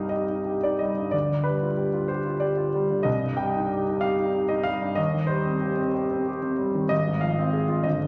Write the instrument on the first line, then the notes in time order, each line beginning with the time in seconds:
grand piano
Already playing: C2 G2 G3 D#4 G4 D#5 F5
0.09 G4 D#5
0.29 D#4
0.46 G4
0.63 D#4 D5
0.79 G3 D#5
0.98 G2
1.11 D2 D5
1.30 D3
1.44 G3 B4
1.62 F4
1.77 G4
1.94 F4
2.08 G4 C5
2.26 F4
2.40 G4 D5
2.57 F4
2.74 G3
2.91 D3
3.03 C2 D#5
3.21 G2
3.37 G3 G5
3.56 D#4
3.72 G4
3.89 D#4
4.01 G4 F5
4.19 D#4
4.35 G4
4.49 D#4 D#5
4.63 G3 F5
4.82 G2
4.95 D#2 D#5
5.14 D#3
5.27 G3 C5
5.45 C4
5.62 G4
5.78 C4
5.94 G4
6.11 C4
6.28 G4
6.42 C4
6.58 G3
6.74 D#3
6.89 G#1 D#5
7.08 G#2
7.21 F3 F5
7.39 C4
7.53 G#4
7.68 F4
7.83 G1 D#5
8.01 G2